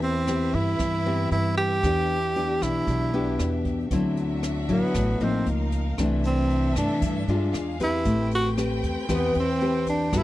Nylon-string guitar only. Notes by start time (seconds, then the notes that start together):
Already playing: E3 B3 C4 G4
0.27 B3 C4 G4
0.80 E3
1.06 B3 C4 G4
1.84 E3 B3 D4 G4
2.36 B3 D4 G4
2.88 B2
3.14 B3 D4 G4
3.92 D3 F#3 C4 E4
4.69 F#3 E4
4.95 A2
5.21 F3 A#3 D#4
5.99 C3 E3 A3 D4
6.77 E3 A3 D4
7.03 G2
7.29 G#3 D4 F4
7.80 C4 G4 B4
8.06 A3
8.57 C4 G4 B4
9.09 E3 C4 G4 B4
9.61 C4 G4 B4
10.13 G3 B3 F#4 A4